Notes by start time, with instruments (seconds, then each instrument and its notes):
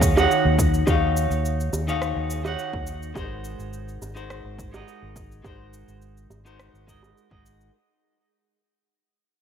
Already playing: fingered electric bass D#2, clean electric guitar D#3 D#4 F#4 G#4 C#5 F5
0.01 kick, shaker
0.15 clean electric guitar D#3 D#4 F#4 C#5, high bongo, shaker
0.20 clean electric guitar F#5
0.31 shaker
0.45 fingered electric bass D#2
0.59 kick, shaker
0.74 shaker
0.86 fingered electric bass D#2, clean electric guitar D#3 D#4 F#4 C#5, kick, high bongo, shaker
0.90 clean electric guitar F5
1.17 shaker
1.31 fingered electric bass D#2, shaker
1.45 shaker
1.60 shaker
1.73 fingered electric bass D#2, high bongo, shaker
1.87 clean electric guitar D#3 D#4 F#4 G#4 C#5 F5, shaker
2.02 cross-stick, shaker
2.17 fingered electric bass D#2
2.30 shaker
2.43 clean electric guitar D#3 D#4 F#4 C#5, high bongo, shaker
2.48 clean electric guitar F#5
2.59 shaker
2.73 fingered electric bass D#2, kick
2.87 shaker
3.03 shaker
3.14 fingered electric bass G#1, clean electric guitar G#3 D#4 F#4 A#4 C5, kick, high bongo, shaker
3.44 shaker
3.59 fingered electric bass G#1, shaker
3.73 shaker
3.88 shaker
4.02 fingered electric bass G#1, high bongo, shaker
4.15 clean electric guitar G#3 D#4 F#4 A#4 C5, shaker
4.30 cross-stick, shaker
4.44 fingered electric bass G#1
4.58 kick, shaker
4.71 clean electric guitar G#3 D#4 F#4 A#4, high bongo, shaker
4.76 clean electric guitar D#5
4.88 shaker
5.03 fingered electric bass G#1
5.16 kick, shaker
5.32 shaker
5.42 fingered electric bass G#1, clean electric guitar G#3 D#4 F#4 A#4, kick, high bongo, shaker
5.47 clean electric guitar C5
5.73 shaker
5.88 fingered electric bass G#1, shaker
6.02 shaker
6.17 shaker
6.30 fingered electric bass G#1, high bongo, shaker
6.45 clean electric guitar G#3 D#4 F#4 A#4 C5, shaker
6.59 cross-stick, shaker
6.74 fingered electric bass G#1, shaker
6.87 clean electric guitar G#3 D#4 F#4 A#4 D#5, kick, shaker
7.03 high bongo, shaker
7.18 shaker
7.30 fingered electric bass G#1, clean electric guitar G#3 D#4 F#4 A#4 D#5, kick
7.46 shaker
7.61 shaker